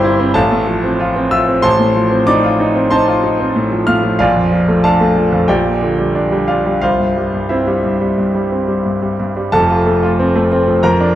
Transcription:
Already playing: G1 G2 G3 C4 E4 G4 A#4 C5 G5 A#5 C6
0.04 E4
0.20 C4
0.34 A1 A4 F5 A5
0.51 A2
0.67 F3
0.84 C4
1.00 F4
1.16 C4
1.31 F4 E5 E6
1.48 C4
1.62 A1 C5 A5 C6
1.79 A2
1.96 F3
2.11 C4
2.27 D#4 D5 D6
2.44 F4
2.60 D#4
2.76 C4
2.90 D#4 C5 A5 C6
3.08 F4
3.24 D#4
3.40 C4
3.56 A2
3.72 F3
3.87 A2 F5 F6
4.04 F3
4.19 A#1 F4 D5 F5
4.36 F2
4.52 F3
4.68 A3
4.84 D4 A4 F5 A5
5.01 A3
5.16 F3
5.32 F2
5.48 A#1 G4 D5 G5
5.66 A#2
5.82 D3
5.99 G3
6.15 D4
6.32 G3
6.48 D4 F4 F5
6.66 G3
6.82 C2 F4 C5 F5
7.00 G2
7.17 G3
7.33 G2
7.49 C4 E4 C5 E5
7.67 G3
7.84 G2
8.01 G3
8.18 G2
8.35 G3
8.51 C4
8.68 G3
8.85 G2
9.02 G3
9.20 G2
9.36 G3
9.52 F1 F2 A4 A5
9.70 F4
9.87 A3
10.03 F4
10.19 C4
10.36 A3
10.52 C4
10.68 F3
10.83 F2 A#4 A#5
11.00 D4

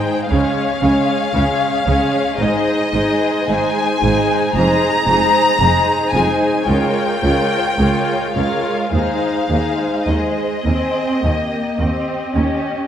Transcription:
Already playing: G#3 D#4 G#4 C5 G5
0.28 C#2 C#3 G#3 C#4 G#4 C#5 F5
0.81 C#2 C#3 G#3 C#4 G#4 C#5
1.34 C#2 C#3 G#3 C#4 G#4 C#5
1.86 C#2 C#3 G#3 C#4 G#4 C#5
2.37 G#1 G#2 G#3 D#4 G#4 C5 D#5
2.92 G#1 G#2 G#3 D#4 G#4 C5
3.48 G#1 G#2 G#3 D#4 G#4 C5 G#5
4.02 G#1 G#2 G#3 D#4 G#4 C5
4.54 F1 F2 G#3 D#4 G#4 C5 A#5
5.06 F1 F2 G#3 D#4 G#4 C5
5.60 F1 F2 G#3 D#4 G#4 C5
6.13 F1 F2 G#3 D#4 G#4 C5 G#5
6.67 C#2 G#3 F4 A#4 C#5 G5
7.21 C#2 G#3 F4 A#4 C#5
7.77 C#2 G#3 F4 A#4 C#5
8.35 C#2 G#3 F4 A#4 C#5 F5
8.92 D#2 G#3 D#4 G#4 C5 F5
9.49 D#2 G#3 D#4 G#4 C5
10.06 D#2 G#3 G#4 C5 D#5
10.65 D#2 C4 G#4 C5
11.23 D#2 A#3 G4 D#5
11.78 D#2 C4 G4 D#5
12.33 D#2 C#4 G4 D#5

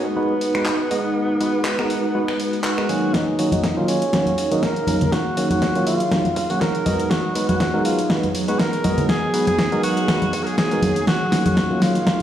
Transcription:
Already playing: G#3 D#4 F#4 G#4 B4 C#5 F#5
0.05 B3
0.16 G#3 B3 D#4 F#4 B4
0.41 open hi-hat
0.55 G#3 B3 D#4 F#4 B4, finger snap
0.66 clap
0.91 G#3 B3 D#4 F#4 D#5, open hi-hat
1.40 G#3 B3 D#4 F#4 B4, open hi-hat
1.65 clap
1.79 G#3 B3 D#4 F#4 A#4, finger snap
1.90 open hi-hat
2.15 G#3 B3 D#4 F#4 B4
2.28 finger snap
2.40 open hi-hat
2.53 open hi-hat
2.64 F#4, clap
2.78 G#3 B3 D#4 F#4 A#4, finger snap
2.89 D#3 F#3 A#3 C#4 G#4, open hi-hat
3.14 F#3 A#3 D#4 C#5, kick, snare, closed hi-hat
3.27 G#4
3.39 D#3 F#3 A#3 C#4 F#4, open hi-hat
3.49 D#4 F5, closed hi-hat, high conga
3.64 kick, snare, closed hi-hat
3.77 D#3 F#3 A#3 C#4 F4
3.88 C#4, open hi-hat
3.98 C#5
4.02 closed hi-hat
4.13 D#3 F#3 A#3 C#4 F#4, kick, snare, closed hi-hat
4.26 closed hi-hat, high conga
4.38 open hi-hat
4.51 D#3 F#3 A#3 C#4 D#4 F#4, closed hi-hat
4.63 A#4, kick, snare, closed hi-hat
4.76 closed hi-hat
4.87 D#3 F#3 A#3 C#4 A#4, open hi-hat, high conga
5.01 closed hi-hat, low conga
5.12 F#4, kick, snare, closed hi-hat
5.37 D#3 F#3 A#3 C#4 F#4, open hi-hat
5.50 F#4, closed hi-hat, high conga
5.62 kick, snare, closed hi-hat
5.75 D#3 F#3 A#3 C#4 F4, closed hi-hat
5.87 F4, open hi-hat
6.00 closed hi-hat
6.11 D#3 F#3 A#3 C#4 F#4, kick, snare, closed hi-hat
6.25 closed hi-hat, high conga
6.36 kick, open hi-hat
6.50 D#3 F#3 A#3 C#4 F#4, open hi-hat
6.61 A#4, kick, snare, closed hi-hat
6.75 closed hi-hat
6.86 G#3 B3 D#4 F#4 D#5, open hi-hat, high conga
6.99 closed hi-hat
7.11 B3 F#4 G#4 D#5, kick, snare, closed hi-hat
7.35 G#3 B3 D#4 F#4 B4, open hi-hat
7.49 F#4, closed hi-hat, high conga
7.60 kick, snare, closed hi-hat
7.74 G#3 B3 D#4 F#4 A#4
7.85 F4, open hi-hat
7.99 closed hi-hat
8.10 G#3 B3 D#4 F#4 B4, kick, snare, closed hi-hat
8.23 closed hi-hat, high conga
8.35 open hi-hat
8.48 G#3 B3 D#4 F#4 B4, closed hi-hat
8.59 A#4, kick, snare, closed hi-hat
8.73 closed hi-hat
8.84 G#3 B3 D#4 F#4 D#5, open hi-hat, high conga
8.98 closed hi-hat, low conga
9.09 G#4 F5, kick, snare, closed hi-hat
9.34 G#3 B3 D#4 F#4 B4, open hi-hat
9.47 G#4, closed hi-hat, high conga
9.59 kick, snare, closed hi-hat
9.72 G#3 B3 D#4 F#4 A#4, closed hi-hat
9.83 F#4, open hi-hat
9.97 closed hi-hat
10.08 G#3 B3 D#4 F#4 B4, kick, snare, closed hi-hat
10.22 closed hi-hat, high conga
10.33 kick, open hi-hat
10.43 G#4 A#4, open hi-hat
10.58 G#4, kick, snare, closed hi-hat
10.71 G#3 B3 D#4 F#4 A#4, closed hi-hat
10.82 D#3 F#3 A#3 C#4 G#4, open hi-hat, high conga
10.96 closed hi-hat
11.07 C#4 D#4 F#4 A#4 D#5, kick, snare, closed hi-hat
11.28 F5
11.32 D#3 F#3 A#3 C#4 F#4, snare, open hi-hat
11.46 F#4, closed hi-hat, high conga
11.57 kick, snare, closed hi-hat
11.71 D#3 F#3 A#3 C#4 F4
11.82 F4, snare, open hi-hat
11.95 closed hi-hat
12.07 kick, snare, closed hi-hat

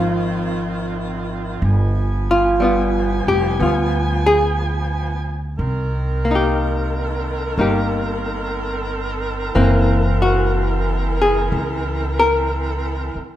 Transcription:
Already playing: G#1 D#3 F3 C4 D#4 F4
1.62 G1 F3 B3 G#5
2.31 F4
2.60 G3 B3 F4
3.27 F1 G4
3.60 D2 B3 F4
4.26 G#4
5.58 C2 D#3 C4 A#4
6.25 A#3
6.31 D#4
6.35 G4
7.58 G1 A#3 D#4 G4
9.52 F#1 E3 A#3 C4
10.22 F#4
11.22 G#4
11.52 C#2
12.19 A#4
13.16 muted upright bass stroke

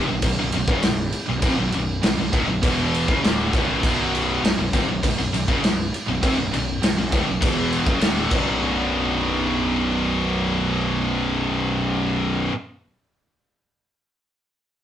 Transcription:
0.08 B0 B1 F#2
0.22 B0 B1 F#2, kick, crash
0.39 B0 B1 F#2
0.52 B0 B1 F#2, crash
0.67 F#1 F#2 C#3, kick
0.83 B0 B1 F#2, snare, crash
1.12 crash
1.26 B0 B1 F#2
1.42 F1 F2 C3, kick, crash
1.58 B0 B1 F#2
1.72 B0 B1 F#2, crash
2.03 B0 B1 F#2, snare, crash
2.17 B0 B1 F#2
2.32 D1 D2 A2, kick, crash
2.47 B0 B1 F#2
2.62 E1 E2 B2 E3, kick, crash
2.94 crash
3.08 F#1 F#2 C#3, kick
3.22 D1 D2 A2 D3, snare, crash
3.53 B0 B1 F#2 B2, kick, crash
3.83 B0 B1 F#2 B2, kick, crash
4.15 crash
4.43 B0 B1 F#2, snare, crash
4.58 B0 B1 F#2
4.73 F1 F2 C3, kick, crash
4.88 B0 B1 F#2
5.03 B0 B1 F#2, kick, crash
5.19 B0 B1 F#2
5.33 B0 B1 F#2, crash
5.48 F#1 F#2 C#3, kick
5.63 B0 B1 F#2, snare, crash
5.94 crash
6.08 B0 B1 F#2
6.23 F1 F2 C3, kick, crash
6.37 B0 B1 F#2
6.53 B0 B1 F#2, crash
6.83 B0 B1 F#2, snare, crash
6.97 B0 B1 F#2
7.12 D1 D2 A2, kick, crash
7.26 B0 B1 F#2
7.41 E1 E2 B2 E3, kick, crash
7.72 crash
7.86 F#1 F#2 C#3, kick
8.00 D1 D2 A2 D3, snare, crash
8.31 B0 B1 F#2 B2 F#3 D4, kick, crash

